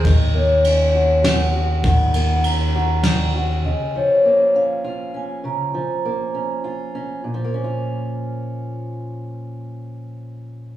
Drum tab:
RD |x-x-x-|xxx-x-|------|------|
SD |----o-|----o-|------|------|
BD |o-----|o-----|------|------|

RD |------|------|
SD |------|------|
BD |------|------|